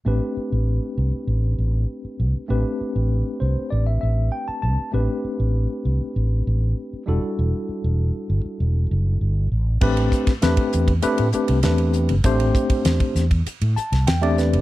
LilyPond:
<<
  \new Staff \with { instrumentName = "Tine electric piano" } { \time 4/4 \key a \minor \tempo 4 = 98 << { r1 | r4. c''8 d''16 e''16 e''8 g''16 a''16 a''8 | r1 | r1 |
r1 | r2 r8 a''8 g''16 e''16 b'8 | } \\ { <a c' d' g' b'>1 | <a c' d' g' b'>1 | <a c' d' g' b'>2.~ <a c' d' g' b'>8 <g d' e' fis' a'>8~ | <g d' e' fis' a'>2.~ <g d' e' fis' a'>8 r8 |
<a c' d' g' b'>8. r16 <a c' d' g' b'>8. r16 <a c' d' g' b'>8 <a c' d' g' b'>8 <a c' d' g' b'>8. r16 | <a c' d' g' c''>4.~ <a c' d' g' c''>16 r4. <a c' d' g' d''>8 r16 | } >> }
  \new Staff \with { instrumentName = "Fretless electric bass" } { \clef bass \time 4/4 \key a \minor a,,16 r8 a,,8 r16 c,16 r16 a,,8 a,,8 r8 c,16 r16 | a,,16 r8 a,,8 r16 c,16 r16 a,,8 a,,8 r8 c,16 r16 | a,,16 r8 a,,8 r16 c,16 r16 a,,8 a,,8 r8 e,,16 r16 | e,,16 r8 e,,8 r16 g,,16 r16 e,,8 fis,,8 g,,8 a,,8 |
a,,8 r8 e,16 r16 e,8 r16 a,16 r16 c,16 e,8. g,,16 | a,,8 r8 e,16 r16 e,8 r16 a,16 r16 c,16 e,8. g,,16 | }
  \new DrumStaff \with { instrumentName = "Drums" } \drummode { \time 4/4 r4 r4 r4 r4 | r4 r4 r4 r4 | r4 r4 r4 r4 | r4 r4 r4 r4 |
<cymc bd>16 cymr16 <hhp bd>16 <bd cymr sn>16 <hhp cymr sn>16 <bd cymr>16 hhp16 <bd cymr>16 <hhp cymr>16 cymr16 hhp16 cymr16 <hhp cymr sn>16 cymr16 hhp16 cymr16 | <hhp bd cymr>16 cymr16 <hhp bd>16 <bd cymr>16 <hhp cymr sn>16 <bd cymr>16 <hhp sn>16 <bd cymr>16 <hhp cymr>16 cymr16 hhp16 <cymr sn>16 <hhp cymr sn>16 cymr16 <hhp sn>16 cymr16 | }
>>